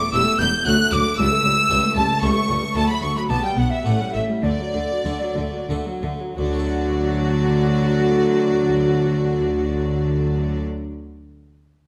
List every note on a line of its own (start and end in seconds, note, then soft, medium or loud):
0.00 0.11 E2 medium
0.00 0.13 A3 medium
0.00 0.13 D6 loud
0.00 0.14 D6 loud
0.13 0.21 E1 medium
0.13 0.21 E2 medium
0.13 0.37 E2 medium
0.13 0.25 G3 medium
0.13 0.51 A3 medium
0.13 0.51 G4 medium
0.13 0.51 A4 medium
0.13 0.39 E6 loud
0.13 0.40 E6 loud
0.26 0.39 A3 medium
0.39 0.48 E1 medium
0.39 0.47 E2 medium
0.39 0.63 E2 medium
0.39 0.52 G3 medium
0.39 0.68 G6 loud
0.39 0.65 G6 loud
0.39 0.49 G6 loud
0.52 0.65 A3 medium
0.64 0.89 D2 medium
0.64 0.74 D2 medium
0.64 0.77 F#3 medium
0.64 1.13 A3 medium
0.64 1.14 F#4 medium
0.64 1.14 A4 medium
0.64 0.94 F#6 loud
0.64 0.92 F#6 loud
0.77 0.91 A3 medium
0.90 1.15 D2 medium
0.90 1.00 D2 medium
0.90 1.04 F#3 medium
0.90 1.18 D6 loud
0.90 1.16 D6 loud
1.04 1.17 A3 medium
1.17 1.41 C#2 medium
1.17 1.26 C#2 loud
1.17 1.30 G3 medium
1.17 1.94 E6 loud
1.17 1.95 E6 loud
1.17 1.96 E6 loud
1.30 1.44 A3 medium
1.43 1.67 C#2 medium
1.43 1.52 C#2 medium
1.43 1.57 G3 medium
1.57 1.70 A3 medium
1.70 1.93 C#2 medium
1.70 1.79 C#2 medium
1.70 1.82 G3 medium
1.70 2.08 A3 medium
1.70 2.08 G4 medium
1.70 2.08 A4 medium
1.83 1.96 A3 medium
1.96 2.20 C#2 medium
1.96 2.04 C#2 medium
1.96 2.05 C#2 medium
1.96 2.09 G3 medium
1.96 2.21 A5 loud
1.96 2.22 A5 loud
2.09 2.22 A3 medium
2.22 2.46 C#2 medium
2.22 2.31 C#2 medium
2.22 2.35 G3 medium
2.22 2.60 A3 medium
2.22 2.60 G4 medium
2.22 2.61 A4 medium
2.22 2.56 C#6 loud
2.22 2.76 C#6 loud
2.36 2.49 A3 medium
2.48 2.73 C#2 medium
2.48 2.57 C#2 medium
2.48 2.62 G3 medium
2.63 2.75 A3 medium
2.75 2.83 D2 loud
2.75 3.00 D2 medium
2.75 3.25 A3 medium
2.75 2.88 A3 medium
2.75 3.26 F#4 medium
2.75 3.26 A4 medium
2.75 2.89 A5 loud
2.75 2.88 A5 loud
2.75 2.89 A5 loud
2.88 3.02 F#3 medium
2.88 3.05 B5 medium
2.88 3.02 B5 medium
2.88 3.03 B5 loud
3.02 3.10 D2 medium
3.02 3.27 D2 medium
3.02 3.10 D2 medium
3.02 3.15 A3 medium
3.02 3.16 C#6 loud
3.02 3.19 C#6 loud
3.02 3.16 C#6 medium
3.15 3.29 F#3 medium
3.15 3.22 B5 medium
3.15 3.31 B5 medium
3.15 3.23 B5 loud
3.28 3.37 B1 medium
3.28 3.36 B2 medium
3.28 3.54 B2 medium
3.28 3.42 B3 medium
3.28 3.82 B3 medium
3.28 3.82 G4 medium
3.28 3.82 D5 medium
3.28 3.43 A5 loud
3.28 3.44 A5 loud
3.43 3.57 G3 medium
3.43 3.60 G5 medium
3.43 3.57 G5 medium
3.43 3.58 G5 loud
3.56 3.65 B1 medium
3.56 3.64 B2 medium
3.56 3.82 B2 medium
3.56 3.71 B3 medium
3.56 3.71 F#5 medium
3.56 3.72 F#5 medium
3.71 3.85 G3 medium
3.71 3.83 E5 medium
3.71 3.86 E5 medium
3.71 3.86 E5 loud
3.84 3.94 A1 medium
3.84 3.92 A2 medium
3.84 4.11 A2 medium
3.84 3.98 A3 medium
3.84 4.40 C#4 medium
3.84 4.40 G4 medium
3.84 4.40 A4 medium
3.84 4.14 F#5 medium
3.84 4.14 F#5 loud
3.84 4.14 F#5 medium
3.99 4.14 G3 medium
4.13 4.23 A1 medium
4.13 4.21 A2 medium
4.13 4.41 A2 medium
4.13 4.29 A3 medium
4.13 4.45 E5 medium
4.13 4.22 E5 medium
4.29 4.44 G3 medium
4.43 4.52 D2 medium
4.43 4.51 D3 medium
4.43 4.71 D3 medium
4.43 4.58 A3 medium
4.43 5.69 D5 medium
4.43 5.66 D5 medium
4.43 5.67 D5 loud
4.60 4.74 F#3 medium
4.74 4.82 D2 medium
4.74 4.82 D3 medium
4.74 5.02 D3 medium
4.74 4.89 A3 medium
4.90 5.05 F#3 medium
5.05 5.14 D2 medium
5.05 5.13 D3 medium
5.05 5.34 D3 medium
5.05 5.20 A3 medium
5.05 5.52 D4 medium
5.05 5.52 F#4 medium
5.05 5.52 A4 medium
5.21 5.37 F#3 medium
5.35 5.45 D2 medium
5.35 5.43 D3 medium
5.35 5.66 D3 medium
5.35 5.53 A3 medium
5.53 5.69 F#3 medium
5.68 5.77 D2 medium
5.68 5.76 D3 medium
5.68 6.00 D3 medium
5.68 5.84 A3 medium
5.68 6.19 D4 soft
5.68 6.19 F#4 medium
5.68 6.19 A4 medium
5.85 6.02 F#3 medium
6.02 6.10 D2 medium
6.02 6.10 D3 medium
6.02 6.34 D3 medium
6.02 6.20 A3 medium
6.20 6.36 F#3 medium
6.36 10.61 D2 medium
6.36 10.62 D3 loud
6.36 10.63 D3 medium
6.36 10.62 F#3 medium
6.36 10.61 F#4 medium
6.36 10.62 D5 loud
6.46 10.70 D4 medium
6.53 10.77 F#4 medium
6.59 10.84 A4 medium
6.66 10.91 F#5 medium